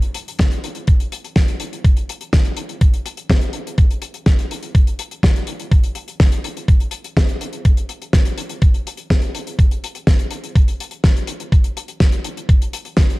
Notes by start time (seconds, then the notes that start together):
0.02 closed hi-hat
0.14 closed hi-hat
0.28 closed hi-hat
0.39 kick, snare, closed hi-hat
0.52 closed hi-hat
0.64 closed hi-hat
0.75 closed hi-hat
0.87 kick, closed hi-hat
1.00 closed hi-hat
1.12 closed hi-hat
1.24 closed hi-hat
1.36 kick, snare, closed hi-hat
1.48 closed hi-hat
1.60 closed hi-hat
1.73 closed hi-hat
1.84 kick, closed hi-hat
1.97 closed hi-hat
2.09 closed hi-hat
2.21 closed hi-hat
2.33 kick, snare, closed hi-hat
2.45 closed hi-hat
2.57 closed hi-hat
2.69 closed hi-hat
2.81 kick, closed hi-hat
2.94 closed hi-hat
3.06 closed hi-hat
3.17 closed hi-hat
3.30 kick, snare, closed hi-hat
3.41 closed hi-hat
3.53 closed hi-hat
3.67 closed hi-hat
3.78 kick, closed hi-hat
3.91 closed hi-hat
4.02 closed hi-hat
4.14 closed hi-hat
4.26 kick, snare, closed hi-hat
4.39 closed hi-hat
4.51 closed hi-hat
4.63 closed hi-hat
4.75 kick, closed hi-hat
4.87 closed hi-hat
4.99 closed hi-hat
5.11 closed hi-hat
5.23 kick, snare, closed hi-hat
5.36 closed hi-hat
5.47 closed hi-hat
5.60 closed hi-hat
5.72 kick, closed hi-hat
5.83 closed hi-hat
5.95 closed hi-hat
6.08 closed hi-hat
6.20 kick, snare, closed hi-hat
6.32 closed hi-hat
6.44 closed hi-hat
6.57 closed hi-hat
6.68 kick, closed hi-hat
6.80 closed hi-hat
6.91 closed hi-hat
7.04 closed hi-hat
7.17 kick, snare, closed hi-hat
7.29 closed hi-hat
7.41 closed hi-hat
7.53 closed hi-hat
7.65 kick, closed hi-hat
7.77 closed hi-hat
7.89 closed hi-hat
8.02 closed hi-hat
8.13 kick, snare, closed hi-hat
8.25 closed hi-hat
8.38 closed hi-hat
8.49 closed hi-hat
8.62 kick, closed hi-hat
8.74 closed hi-hat
8.87 closed hi-hat
8.97 closed hi-hat
9.10 kick, snare, closed hi-hat
9.22 closed hi-hat
9.35 closed hi-hat
9.47 closed hi-hat
9.59 kick, closed hi-hat
9.71 closed hi-hat
9.84 closed hi-hat
9.95 closed hi-hat
10.07 kick, snare, closed hi-hat
10.19 closed hi-hat
10.31 closed hi-hat
10.44 closed hi-hat
10.55 kick, closed hi-hat
10.68 closed hi-hat
10.80 closed hi-hat
10.91 closed hi-hat
11.04 kick, snare, closed hi-hat
11.17 closed hi-hat
11.27 closed hi-hat
11.40 closed hi-hat
11.52 kick, closed hi-hat
11.64 closed hi-hat
11.77 closed hi-hat
11.88 closed hi-hat
12.00 kick, snare, closed hi-hat
12.12 closed hi-hat
12.24 closed hi-hat
12.37 closed hi-hat
12.49 kick, closed hi-hat
12.62 closed hi-hat
12.73 closed hi-hat
12.85 closed hi-hat
12.97 kick, snare, closed hi-hat
13.10 closed hi-hat